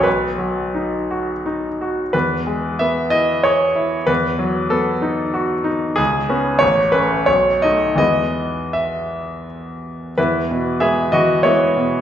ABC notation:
X:1
M:3/4
L:1/8
Q:1/4=92
K:E
V:1 name="Grand piano"
B4 z2 | B2 e d c2 | B2 A3 z | G2 c B c d |
d2 e2 z2 | [EB]2 [Ge] [Fd] [Ec]2 |]
V:2 name="Grand piano"
B,,, F, D F D F | E,, G, B, E G E | E,, F, B, D F D | C,, [B,C] A,,, [A,C] B,,, [A,D] |
[E,,E,G,B,]6 | E,, B,, [G,B,] E, [G,B,] B,, |]